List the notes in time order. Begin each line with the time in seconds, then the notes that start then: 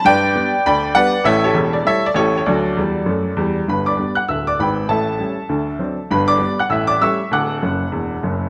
0.05 G2 B4 D5 G5
0.36 G3 B3 D4
0.66 D2 D5 G5 B5
0.95 G3 B3 D4 B4 D5 F#5
1.24 A1 A2 A4 C#5 E5
1.44 G4 A4 C#5
1.54 E1 E2
1.73 D5
1.85 G3 A3 E4 A4 C#5 E5
2.06 D5
2.14 A1 A2 G4 A4 C#5
2.37 C#5
2.46 D2 F#3 F#4 A4 D5
2.77 E2 G3
3.06 F#2 A3
3.37 E2 G3
3.68 G1 G2 B4 B5
3.86 D5 B5 D6
3.98 G3 B3 D4
4.15 F#5 F#6
4.28 D1 D2 E5 E6
4.47 D5 D6
4.59 G#1 G#2 B4 G5 B5
4.88 A1 A2 A4 E5 A5
5.19 G3 A3 C#4
5.49 D2 D3
5.79 F#3 C4 D4
6.11 G1 G2 B4 B5
6.28 D5 B5 D6
6.39 G3 B3 D4
6.59 F#5 F#6
6.69 A1 A2 E5 E6
6.87 D5 D6
7.01 G3 A3 C#4 E5 C#6 E6
7.31 D1 D2 F#5 D6 F#6
7.63 F#1 F#2
7.92 E1 E2
8.23 F#1 F#2